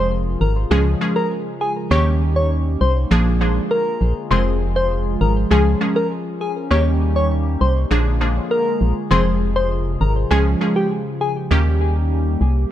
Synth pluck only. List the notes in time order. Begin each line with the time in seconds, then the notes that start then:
0.71 F3 G#3 C#4 G#4
1.01 F3 G#3 C#4 G#4
1.91 D#3 A#3 C#4 G4
3.11 F3 A#3 D4 G#4
3.41 F3 A#3 D4 G#4
4.31 F3 G#3 C4 G#4
5.51 F3 G#3 C#4 G#4
5.81 F3 G#3 C#4 G#4
6.71 D#3 A#3 C#4 G4
7.91 F3 A#3 D4 G#4
8.21 F3 A#3 D4 G#4
9.11 F3 G#3 C4 G#4
10.31 F3 G#3 C#4 G#4
10.61 F3 G#3 C#4 G#4
11.51 D#3 A#3 C#4 G4